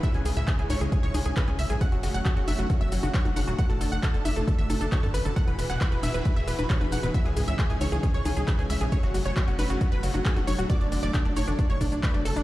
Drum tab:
HH |xxoxxxoxxxoxxxo-|xxoxxxoxxxoxxxox|xxoxxxoxxxo-xxo-|xxoxxxoxxxoxxxox|
SH |x-xxx-xxx-xxx-xx|x-xxx-xxx-xxx-xx|x-xxx-xxx-xxx-xx|x-xxx-xxx-xxx-xx|
CP |----x-------x---|----x-------x---|----x-------x---|----x-------x---|
CG |------o---o-----|------o----o-oo-|------o---o-----|------o----o-oo-|
BD |o---o---o---o---|o---o---o---o---|o---o---o---o---|o---o---o---o---|

HH |xxoxxxo-xxo-xxox|xxoxxxoxxxoxxxox|xxo-xxo-xxoxxxox|
SH |x-xxx-xxx-xxx-xx|x-xxx-xxx-xxx-xx|x-xxx-xxx-xxx-xx|
CP |----x-------x---|----x-------x---|----x-------x---|
CG |------o---o-----|------o----o-oo-|------o---o-----|
BD |o---o---o---o---|o---o---o---o---|o---o---o-o-o---|